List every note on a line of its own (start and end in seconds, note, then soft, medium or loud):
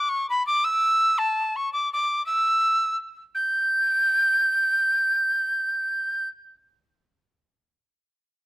0.00 0.10 D6 loud
0.09 0.29 C#6 loud
0.29 0.45 B5 medium
0.46 0.66 D6 loud
0.64 1.20 E6 loud
1.18 1.57 A5 loud
1.56 1.72 C#6 medium
1.73 1.91 D6 medium
1.93 2.24 D6 loud
2.26 2.96 E6 loud
3.35 6.28 G6 medium